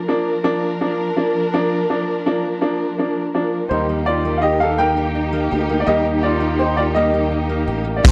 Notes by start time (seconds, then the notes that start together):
Already playing: F3 D4 A#4
0.08 F3 A#3 D4
0.44 F3 A#3 D4
0.81 F3 A#3 D4
1.16 F3 A#3 D4
1.53 F3 A#3 D4
1.89 F3 A#3 D4
2.26 F3 A#3 D4
2.61 F3 A#3 D4
2.98 F3 A#3 D4
3.34 F3 A#3 D4
3.69 D#2 G3 A#3 D#4 G4 C5
3.89 A#3
4.06 D#4 F4 D5
4.25 A#3
4.37 F5
4.41 G4 D#5
4.60 A#3 A4 F5
4.78 A#3 A#4 G5
4.97 A#3
5.15 D#4
5.33 A#3
5.51 D2 G4
5.69 A#3
5.80 D5
5.87 D#2 G3 A#3 D#4 G4 D#5
6.05 A#3
6.23 D#4 F4 D5
6.41 A#3
6.59 D#4 G4 C5
6.77 A#3 F4 D5
6.95 G3 A#3 D#4 G4 D#5
7.14 A#3
7.32 D#4
7.49 A#3
7.67 A1 G4
7.85 A#3
7.97 D5
8.04 A#1 D3 F3 A#3 D4 F4 C5, kick, closed hi-hat